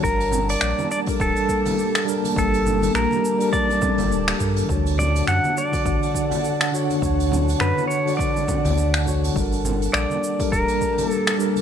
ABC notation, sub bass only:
X:1
M:4/4
L:1/16
Q:"Swing 16ths" 1/4=103
K:Glyd
V:1 name="Sub bass" clef=bass
G,,,4 _B,,, z3 D,,, z6 z | G,,,4 _B,,, z6 G,,, D,,, z G,, z | D,,4 F,, z3 A,,, z6 z | D,,4 F,, z6 D,,4- D,, |
G,,,4 _B,,, z3 D,,, z6 z |]